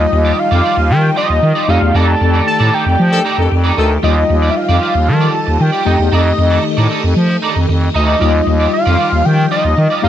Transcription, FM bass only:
0.13 0.33 D#2 loud
0.52 0.62 F2 loud
0.77 0.92 D#2 medium
0.90 1.11 D#3 loud
1.30 1.40 D#2 medium
1.43 1.53 D#3 loud
1.68 1.79 F2 loud
1.82 1.92 E2 loud
1.95 2.15 F2 loud
2.21 2.41 F2 loud
2.60 2.70 A2 loud
2.86 2.96 F2 loud
3.00 3.20 F3 loud
3.38 3.48 F2 medium
3.52 3.72 F2 loud
3.78 3.98 D2 loud
4.04 4.24 D#2 loud
4.30 4.50 D#2 loud
4.69 4.79 F2 loud
4.95 5.10 D#2 medium
5.09 5.29 D#3 loud
5.48 5.58 D#2 medium
5.61 5.71 D#3 loud
5.86 5.96 F2 loud
5.99 6.09 E2 medium
6.12 6.33 F2 loud
6.38 6.59 F2 loud
6.78 6.88 A2 medium
7.04 7.14 F2 loud
7.17 7.37 F3 loud
7.56 7.66 F2 loud
7.69 7.89 F2 medium
7.95 8.15 D2 loud
8.21 8.41 D#2 loud
8.47 8.67 D#2 medium
8.87 8.97 F2 loud
9.12 9.23 D#2 medium
9.26 9.46 D#3 loud
9.65 9.75 D#2 loud
9.78 9.88 D#3 loud
10.04 10.09 F2 loud

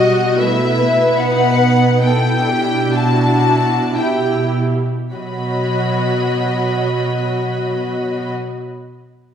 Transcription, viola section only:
0.00 0.41 G3 soft
0.00 0.39 F#4 soft
0.41 0.81 A3 soft
0.41 1.21 E4 soft
0.82 2.05 B3 soft
1.20 1.62 D#4 soft
1.64 2.04 D#4 soft
2.06 2.48 B3 soft
2.06 3.96 E4 soft
2.49 3.94 D4 soft
3.98 4.84 E4 soft
3.98 4.84 G4 soft
5.13 8.28 F#3 soft
5.13 8.28 F#4 soft

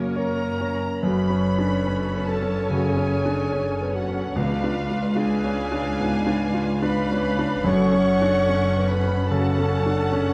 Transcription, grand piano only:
0.00 1.05 C#3 soft
0.00 0.43 A#3 soft
0.00 0.61 C#4 soft
0.00 0.16 C#5 soft
0.16 0.86 C#5 soft
0.61 1.03 C#4 soft
1.03 2.66 F#2 soft
1.30 1.75 C#4 soft
1.59 1.86 D4 soft
1.87 2.31 C#4 soft
2.16 2.43 B3 soft
2.42 2.87 C#4 soft
2.70 3.14 C#3 soft
2.97 3.42 C#4 soft
3.25 3.54 D4 soft
3.53 3.98 C#4 soft
3.81 4.09 B3 soft
4.08 4.37 C#4 soft
4.36 5.95 C#2 soft
4.64 5.06 D4 soft
4.90 5.17 F4 soft
5.16 5.60 D4 soft
5.44 5.72 C#4 soft
5.72 6.16 D4 soft
5.99 6.44 G#2 soft
6.27 6.71 D4 soft
6.54 6.82 F4 soft
6.82 7.27 D4 soft
7.12 7.39 C#4 soft
7.39 7.66 D4 soft
7.64 9.26 F#2 medium
7.92 8.37 C#4 soft
8.22 8.49 D4 soft
8.49 8.93 C#4 soft
8.77 9.04 B3 soft
9.03 9.47 C#4 soft
9.30 9.74 C#3 soft
9.58 10.02 C#4 soft
9.86 10.13 D4 soft
10.12 10.34 C#4 soft

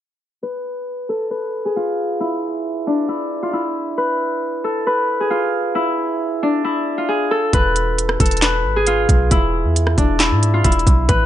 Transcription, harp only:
0.43 1.30 B4 medium
1.09 1.71 A4 medium
1.31 3.35 B4 medium
1.65 3.93 G#4 medium
1.76 2.26 F4 loud
2.20 3.08 E4 medium
2.87 5.67 D4 medium
3.09 3.49 E4 medium
3.43 3.59 F4 medium
3.53 5.36 E4 medium
3.98 4.86 B4 medium
4.64 5.26 A4 medium
4.87 6.92 B4 medium
5.20 7.08 G#4 medium
5.30 5.81 F4 medium
5.75 6.64 E4 loud
6.43 9.23 D4 medium
6.64 7.04 E4 medium
6.98 8.87 F4 medium
7.09 7.37 G#4 medium
7.31 8.20 A4 medium
7.54 8.41 B4 loud
8.20 8.82 A4 medium
8.42 10.47 B4 medium
8.76 11.04 G#4 medium
8.87 9.37 F4 loud
9.31 10.19 E4 medium
9.98 11.26 D4 medium
10.19 10.60 E4 medium
10.54 10.70 F4 medium
10.64 11.26 E4 medium
11.09 11.26 B4 medium

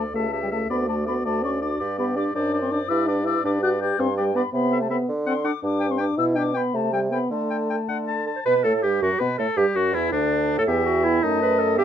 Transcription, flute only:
0.15 0.42 A5 soft
0.43 0.47 G5 soft
0.52 0.58 A5 soft
0.71 0.77 B5 soft
0.89 0.95 A5 soft
1.08 1.14 B5 soft
1.26 1.44 A5 medium
1.45 1.51 C#6 soft
1.64 1.81 D6 soft
2.00 2.06 B5 soft
2.18 2.24 D6 medium
2.36 2.61 D6 soft
2.61 2.73 C6 soft
2.71 2.90 D6 medium
2.89 3.07 E6 medium
3.08 3.14 D6 soft
3.26 3.44 E6 soft
3.45 3.51 D6 soft
3.63 3.69 F#6 medium
3.81 4.01 G6 soft
4.00 4.17 C6 medium
4.18 4.37 G5 medium
4.36 4.53 B5 medium
4.54 4.80 B5 medium
4.82 4.90 A5 soft
4.91 4.97 B5 soft
5.28 5.47 C6 medium
5.46 5.64 D6 medium
5.65 5.93 D6 medium
5.91 6.02 C6 medium
6.00 6.18 D6 medium
6.18 6.24 E6 medium
6.38 6.58 D6 soft
6.57 6.77 B5 medium
6.76 6.94 A5 medium
6.94 7.00 G5 soft
7.13 7.31 B5 soft
7.32 8.25 A5 soft
8.46 8.63 B4 medium
8.65 8.83 A4 medium
8.84 8.90 G4 medium
9.02 9.08 F#4 medium
9.20 9.26 B4 medium
9.40 9.59 A4 medium
9.58 9.77 G4 medium
9.76 9.96 F#4 medium
9.94 10.12 E4 medium
10.12 10.60 D4 medium
10.58 10.68 A4 medium
10.69 11.20 G5 soft
11.23 11.77 A5 medium
11.78 11.84 G5 medium

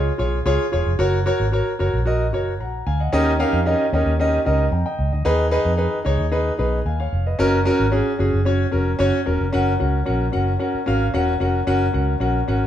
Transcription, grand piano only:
0.00 0.11 F4 medium
0.00 0.11 G#4 medium
0.00 0.11 C#5 medium
0.18 0.37 F4 medium
0.18 0.37 G#4 medium
0.18 0.38 C#5 medium
0.46 0.64 F4 loud
0.46 0.64 G#4 medium
0.46 0.64 C#5 loud
0.72 0.91 F4 medium
0.72 0.91 G#4 medium
0.72 0.91 C#5 loud
0.99 1.17 F#4 loud
0.99 1.18 A#4 medium
0.99 1.18 C#5 loud
1.26 1.44 F#4 loud
1.26 1.44 A#4 medium
1.26 1.45 C#5 loud
1.52 1.71 F#4 medium
1.52 1.71 A#4 medium
1.52 1.71 C#5 loud
1.79 1.98 F#4 medium
1.79 1.98 A#4 medium
1.79 1.98 C#5 loud
2.06 2.24 F#4 medium
2.06 2.25 A#4 medium
2.06 2.25 D#5 loud
2.33 2.51 F#4 medium
2.33 2.52 A#4 medium
2.33 2.52 C#5 medium
2.60 2.86 F#5 medium
2.60 2.85 A#5 medium
2.87 2.99 F5 medium
2.87 2.99 G#5 medium
3.00 3.12 D#5 medium
3.00 3.25 F#5 medium
3.13 3.89 D#3 medium
3.13 3.31 C#4 loud
3.13 3.31 D#4 loud
3.13 3.31 G4 loud
3.13 3.31 A#4 loud
3.13 3.32 D#5 loud
3.39 3.58 C#4 loud
3.39 3.58 D#4 loud
3.39 3.58 G4 loud
3.39 3.58 A#4 medium
3.39 3.58 F5 loud
3.66 3.84 C#4 medium
3.66 3.85 D#4 medium
3.66 3.85 G4 medium
3.66 3.85 A#4 medium
3.66 3.85 D#5 loud
3.93 4.12 C#4 medium
3.93 4.12 D#4 medium
3.93 4.12 G4 medium
3.93 4.12 A#4 medium
3.93 4.12 D#5 medium
4.20 4.38 C#4 medium
4.20 4.38 D#4 medium
4.20 4.38 G4 medium
4.20 4.38 A#4 medium
4.20 4.39 D#5 loud
4.45 4.64 C#4 medium
4.45 4.64 D#4 medium
4.45 4.64 G4 medium
4.45 4.65 A#4 medium
4.45 4.65 D#5 medium
4.72 4.84 G5 medium
4.72 4.85 A#5 medium
4.86 5.11 D#5 medium
4.86 5.12 G5 medium
5.13 5.38 D#5 medium
5.25 6.02 D#3 medium
5.25 5.44 D#4 loud
5.25 5.44 G#4 loud
5.25 5.44 B4 loud
5.51 5.71 D#4 loud
5.51 5.71 G#4 loud
5.51 5.71 B4 loud
5.77 5.97 D#4 medium
5.77 5.97 G#4 medium
5.77 5.98 B4 loud
6.05 6.24 D#4 medium
6.05 6.24 G#4 medium
6.05 6.25 C#5 loud
6.32 6.51 D#4 medium
6.32 6.51 G#4 medium
6.32 6.51 B4 loud
6.58 6.78 D#4 medium
6.58 6.78 G#4 medium
6.58 6.78 B4 medium
6.86 6.98 F5 medium
6.86 6.99 G#5 medium
7.00 7.26 C#5 medium
7.00 7.25 F5 medium
7.26 7.52 B4 medium
7.26 7.52 D#5 medium
7.39 7.58 C#4 loud
7.39 7.58 F#4 loud
7.39 7.58 A#4 loud
7.65 7.84 C#4 loud
7.65 7.85 F#4 loud
7.65 7.85 A#4 loud
7.92 8.11 C#4 medium
7.92 8.11 F#4 medium
7.92 8.11 G#4 loud
8.19 8.38 C#4 medium
8.19 8.38 F#4 medium
8.19 8.38 G#4 loud
8.45 8.64 C#4 medium
8.45 8.65 F#4 medium
8.45 8.65 C#5 loud
8.71 8.91 C#4 medium
8.71 8.91 F#4 medium
8.71 8.91 A#4 medium
8.99 9.18 C#4 loud
8.99 9.18 F#4 loud
8.99 9.18 C#5 loud
9.26 9.45 C#4 medium
9.26 9.45 F#4 medium
9.26 9.45 A#4 medium
9.53 9.71 C#4 loud
9.53 9.72 F#4 medium
9.53 9.72 A#4 medium
9.53 9.72 F#5 loud
9.79 9.98 C#4 medium
9.79 9.98 F#4 medium
9.79 9.98 A#4 medium
9.79 9.98 F#5 medium
10.06 10.25 C#4 medium
10.06 10.25 F#4 medium
10.06 10.25 A#4 medium
10.06 10.25 F#5 medium
10.32 10.51 C#4 medium
10.32 10.52 F#4 medium
10.32 10.52 A#4 medium
10.32 10.52 F#5 medium
10.59 10.78 C#4 medium
10.59 10.78 F#4 medium
10.59 10.79 A#4 medium
10.59 10.79 F#5 medium
10.86 11.05 C#4 medium
10.86 11.06 F#4 medium
10.86 11.05 A#4 medium
10.86 11.06 F5 loud
11.14 11.32 C#4 medium
11.14 11.32 F#4 medium
11.14 11.33 A#4 medium
11.14 11.33 F#5 loud
11.40 11.59 C#4 medium
11.40 11.59 F#4 medium
11.40 11.59 A#4 medium
11.40 11.59 F#5 medium
11.67 11.86 C#4 loud
11.67 11.86 F#4 medium
11.67 11.86 A#4 medium
11.67 11.86 F#5 loud
11.93 12.12 C#4 medium
11.93 12.12 F#4 medium
11.93 12.12 A#4 medium
11.93 12.13 F#5 medium
12.20 12.39 C#4 medium
12.20 12.39 F#4 medium
12.20 12.40 A#4 medium
12.20 12.39 F#5 medium
12.48 12.66 C#4 medium
12.48 12.66 F#4 medium
12.48 12.67 A#4 medium
12.48 12.66 F#5 medium

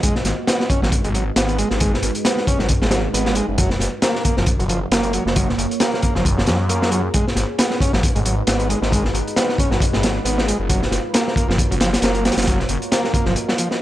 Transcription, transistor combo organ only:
0.03 0.15 G#3 loud
0.47 0.68 B3 loud
0.69 0.81 C#4 medium
0.82 0.90 F#3 medium
1.05 1.09 G#3 medium
1.14 1.24 F#3 medium
1.36 1.58 B3 loud
1.58 1.69 G#3 loud
1.81 1.92 G#3 loud
2.25 2.46 B3 loud
2.48 2.59 C#4 medium
2.60 2.68 F#3 medium
2.82 2.87 G#3 medium
2.92 3.02 F#3 medium
3.13 3.35 B3 loud
3.36 3.46 G#3 loud
3.58 3.70 F#3 loud
4.02 4.23 A#3 loud
4.25 4.36 A#3 medium
4.38 4.46 F3 medium
4.60 4.65 F#3 medium
4.69 4.80 F3 medium
4.92 5.13 A#3 loud
5.14 5.24 F#3 loud
5.36 5.48 F#3 loud
5.80 6.01 A#3 loud
6.03 6.14 A#3 medium
6.15 6.23 F3 medium
6.38 6.42 F#3 medium
6.47 6.57 F3 medium
6.69 6.91 A#3 loud
6.91 7.02 F#3 loud
7.14 7.26 G#3 loud
7.58 7.80 B3 loud
7.81 7.92 C#4 medium
7.93 8.01 F#3 medium
8.16 8.20 G#3 medium
8.25 8.35 F#3 medium
8.47 8.68 B3 loud
8.69 8.80 G#3 loud
8.92 9.04 G#3 loud
9.36 9.57 B3 loud
9.59 9.70 C#4 medium
9.71 9.79 F#3 medium
9.93 9.98 G#3 medium
10.03 10.13 F#3 medium
10.25 10.46 B3 loud
10.48 10.58 G#3 loud
10.69 10.81 F#3 loud
11.14 11.35 A#3 loud
11.36 11.47 A#3 medium
11.48 11.56 F3 medium
11.71 11.76 F#3 medium
11.81 11.91 F3 medium
12.03 12.24 A#3 loud
12.25 12.35 F#3 loud
12.47 12.59 F#3 loud
12.92 13.12 A#3 loud
13.14 13.25 A#3 medium
13.26 13.34 F3 medium
13.49 13.53 F#3 medium
13.58 13.69 F3 medium

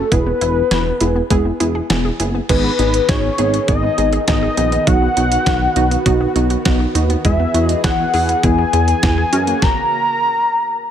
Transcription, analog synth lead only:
0.00 0.13 A4 medium
0.12 1.90 B4 loud
2.49 3.10 B4 medium
3.09 3.68 C#5 medium
3.68 4.24 D#5 loud
4.28 4.89 D#5 loud
4.87 6.95 F#5 loud
7.25 7.65 E5 medium
7.65 7.80 D#5 medium
7.84 8.45 F#5 loud
8.44 9.64 G#5 loud
9.62 10.91 A#5 loud

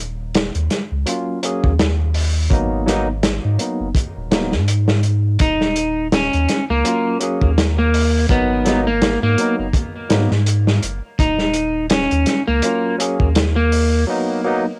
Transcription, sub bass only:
0.00 0.51 D#1 loud
0.55 0.69 D#2 medium
0.92 1.05 C#2 medium
1.64 2.49 D#2 medium
2.51 3.40 G#1 loud
3.45 3.58 G#2 medium
3.80 3.94 F#1 medium
4.17 4.54 D#1 medium
4.53 5.38 G#2 medium
5.40 6.29 D#1 medium
6.34 6.47 D#2 loud
6.70 6.83 C#2 medium
7.42 8.27 D#2 medium
8.30 9.18 G#1 medium
9.23 9.36 G#2 medium
9.59 9.73 F#1 medium
10.11 10.29 G#2 medium
10.31 10.80 G#2 loud
10.83 11.01 F#1 medium
11.19 12.08 D#1 medium
12.12 12.26 D#2 medium
12.48 12.62 C#2 medium
13.20 14.05 D#2 medium

